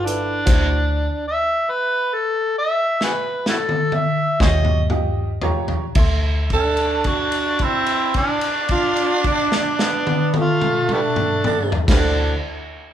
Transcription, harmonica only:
0, 0, Header, 1, 2, 480
1, 0, Start_track
1, 0, Tempo, 803213
1, 284, Time_signature, 12, 3, 24, 8
1, 768, Tempo, 857143
1, 1728, Tempo, 923077
1, 2208, Tempo, 980392
1, 2688, Tempo, 1054482
1, 3168, Tempo, 1096892
1, 6220, End_track
2, 0, Start_track
2, 0, Title_t, "Harmonica"
2, 0, Program_c, 0, 22
2, 37, Note_on_c, 0, 62, 90
2, 758, Note_off_c, 0, 62, 0
2, 762, Note_on_c, 0, 76, 90
2, 1003, Note_on_c, 0, 71, 77
2, 1011, Note_off_c, 0, 76, 0
2, 1247, Note_on_c, 0, 69, 72
2, 1255, Note_off_c, 0, 71, 0
2, 1477, Note_off_c, 0, 69, 0
2, 1492, Note_on_c, 0, 76, 94
2, 1727, Note_off_c, 0, 76, 0
2, 1748, Note_on_c, 0, 66, 51
2, 1748, Note_on_c, 0, 68, 51
2, 1748, Note_on_c, 0, 71, 74
2, 1792, Note_off_c, 0, 66, 0
2, 1794, Note_off_c, 0, 68, 0
2, 1967, Note_off_c, 0, 71, 0
2, 1981, Note_on_c, 0, 64, 51
2, 1981, Note_on_c, 0, 66, 51
2, 1981, Note_on_c, 0, 69, 73
2, 2024, Note_off_c, 0, 66, 0
2, 2025, Note_off_c, 0, 64, 0
2, 2219, Note_on_c, 0, 76, 84
2, 2226, Note_off_c, 0, 69, 0
2, 2442, Note_off_c, 0, 76, 0
2, 2446, Note_on_c, 0, 68, 61
2, 2446, Note_on_c, 0, 72, 61
2, 2446, Note_on_c, 0, 75, 87
2, 2482, Note_off_c, 0, 72, 0
2, 2487, Note_off_c, 0, 68, 0
2, 2682, Note_off_c, 0, 75, 0
2, 3421, Note_on_c, 0, 62, 90
2, 3904, Note_on_c, 0, 60, 92
2, 3910, Note_off_c, 0, 62, 0
2, 4129, Note_off_c, 0, 60, 0
2, 4140, Note_on_c, 0, 62, 87
2, 4367, Note_off_c, 0, 62, 0
2, 4372, Note_on_c, 0, 65, 83
2, 4603, Note_off_c, 0, 65, 0
2, 4618, Note_on_c, 0, 62, 87
2, 5079, Note_off_c, 0, 62, 0
2, 5107, Note_on_c, 0, 65, 81
2, 5330, Note_off_c, 0, 65, 0
2, 5344, Note_on_c, 0, 55, 62
2, 5344, Note_on_c, 0, 59, 62
2, 5344, Note_on_c, 0, 62, 88
2, 5371, Note_off_c, 0, 59, 0
2, 5374, Note_off_c, 0, 55, 0
2, 5699, Note_off_c, 0, 62, 0
2, 5773, Note_on_c, 0, 55, 60
2, 5773, Note_on_c, 0, 59, 60
2, 5773, Note_on_c, 0, 62, 86
2, 5805, Note_off_c, 0, 55, 0
2, 5808, Note_off_c, 0, 59, 0
2, 5976, Note_off_c, 0, 62, 0
2, 6220, End_track
0, 0, End_of_file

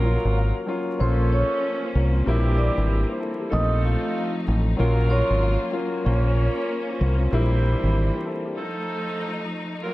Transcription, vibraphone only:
0, 0, Header, 1, 2, 480
1, 0, Start_track
1, 0, Key_signature, -5, "minor"
1, 0, Tempo, 631579
1, 759, Time_signature, 4, 2, 24, 8
1, 7552, End_track
2, 0, Start_track
2, 0, Title_t, "Vibraphone"
2, 0, Program_c, 0, 11
2, 762, Note_on_c, 0, 72, 108
2, 768, Note_on_c, 0, 84, 83
2, 977, Note_off_c, 0, 72, 0
2, 980, Note_off_c, 0, 84, 0
2, 1007, Note_on_c, 0, 73, 82
2, 1013, Note_on_c, 0, 85, 65
2, 1365, Note_off_c, 0, 73, 0
2, 1368, Note_off_c, 0, 85, 0
2, 1960, Note_on_c, 0, 74, 91
2, 1967, Note_on_c, 0, 86, 69
2, 2090, Note_off_c, 0, 74, 0
2, 2094, Note_off_c, 0, 86, 0
2, 2676, Note_on_c, 0, 75, 103
2, 2682, Note_on_c, 0, 87, 82
2, 2893, Note_off_c, 0, 75, 0
2, 2897, Note_off_c, 0, 87, 0
2, 2927, Note_on_c, 0, 77, 91
2, 2933, Note_on_c, 0, 65, 67
2, 3285, Note_off_c, 0, 77, 0
2, 3288, Note_off_c, 0, 65, 0
2, 3876, Note_on_c, 0, 73, 96
2, 3882, Note_on_c, 0, 85, 66
2, 4239, Note_off_c, 0, 73, 0
2, 4242, Note_off_c, 0, 85, 0
2, 7552, End_track
0, 0, End_of_file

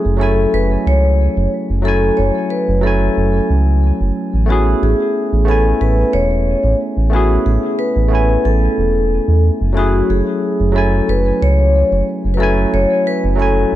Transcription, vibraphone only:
0, 0, Header, 1, 2, 480
1, 0, Start_track
1, 0, Key_signature, 3, "minor"
1, 0, Tempo, 659341
1, 1349, Time_signature, 4, 2, 24, 8
1, 10014, End_track
2, 0, Start_track
2, 0, Title_t, "Vibraphone"
2, 0, Program_c, 0, 11
2, 0, Note_on_c, 0, 68, 75
2, 155, Note_on_c, 0, 69, 82
2, 165, Note_off_c, 0, 68, 0
2, 393, Note_on_c, 0, 71, 93
2, 399, Note_off_c, 0, 69, 0
2, 500, Note_off_c, 0, 71, 0
2, 636, Note_on_c, 0, 73, 96
2, 1083, Note_off_c, 0, 73, 0
2, 1348, Note_on_c, 0, 69, 86
2, 1571, Note_off_c, 0, 69, 0
2, 1579, Note_on_c, 0, 73, 85
2, 1823, Note_on_c, 0, 71, 91
2, 1832, Note_off_c, 0, 73, 0
2, 2049, Note_off_c, 0, 71, 0
2, 2063, Note_on_c, 0, 69, 74
2, 2517, Note_off_c, 0, 69, 0
2, 3278, Note_on_c, 0, 66, 82
2, 3518, Note_on_c, 0, 68, 76
2, 3521, Note_off_c, 0, 66, 0
2, 3992, Note_on_c, 0, 69, 88
2, 4007, Note_off_c, 0, 68, 0
2, 4099, Note_off_c, 0, 69, 0
2, 4230, Note_on_c, 0, 71, 97
2, 4465, Note_on_c, 0, 73, 101
2, 4477, Note_off_c, 0, 71, 0
2, 4918, Note_off_c, 0, 73, 0
2, 5194, Note_on_c, 0, 66, 84
2, 5431, Note_on_c, 0, 68, 78
2, 5438, Note_off_c, 0, 66, 0
2, 5653, Note_off_c, 0, 68, 0
2, 5669, Note_on_c, 0, 71, 96
2, 6154, Note_on_c, 0, 69, 83
2, 6163, Note_off_c, 0, 71, 0
2, 6842, Note_off_c, 0, 69, 0
2, 7112, Note_on_c, 0, 66, 88
2, 7354, Note_on_c, 0, 68, 79
2, 7358, Note_off_c, 0, 66, 0
2, 7833, Note_on_c, 0, 69, 89
2, 7846, Note_off_c, 0, 68, 0
2, 8076, Note_on_c, 0, 71, 99
2, 8078, Note_off_c, 0, 69, 0
2, 8317, Note_on_c, 0, 73, 108
2, 8319, Note_off_c, 0, 71, 0
2, 8764, Note_off_c, 0, 73, 0
2, 8984, Note_on_c, 0, 71, 71
2, 9029, Note_on_c, 0, 69, 86
2, 9031, Note_off_c, 0, 71, 0
2, 9273, Note_on_c, 0, 73, 97
2, 9276, Note_off_c, 0, 69, 0
2, 9494, Note_off_c, 0, 73, 0
2, 9515, Note_on_c, 0, 71, 88
2, 9622, Note_off_c, 0, 71, 0
2, 9752, Note_on_c, 0, 69, 80
2, 10014, Note_off_c, 0, 69, 0
2, 10014, End_track
0, 0, End_of_file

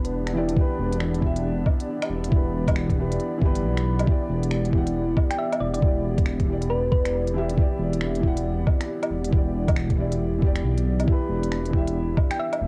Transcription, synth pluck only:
0, 0, Header, 1, 2, 480
1, 0, Start_track
1, 0, Key_signature, 1, "minor"
1, 0, Tempo, 437956
1, 624, Time_signature, 4, 2, 24, 8
1, 13892, End_track
2, 0, Start_track
2, 0, Title_t, "Synth pluck"
2, 0, Program_c, 0, 84
2, 5815, Note_on_c, 0, 79, 92
2, 5886, Note_off_c, 0, 79, 0
2, 5903, Note_on_c, 0, 76, 96
2, 6125, Note_off_c, 0, 76, 0
2, 6143, Note_on_c, 0, 74, 85
2, 6239, Note_off_c, 0, 74, 0
2, 6288, Note_on_c, 0, 74, 74
2, 6348, Note_off_c, 0, 74, 0
2, 7343, Note_on_c, 0, 71, 101
2, 7565, Note_off_c, 0, 71, 0
2, 7582, Note_on_c, 0, 71, 94
2, 7973, Note_off_c, 0, 71, 0
2, 13493, Note_on_c, 0, 79, 89
2, 13565, Note_off_c, 0, 79, 0
2, 13584, Note_on_c, 0, 76, 100
2, 13806, Note_off_c, 0, 76, 0
2, 13892, End_track
0, 0, End_of_file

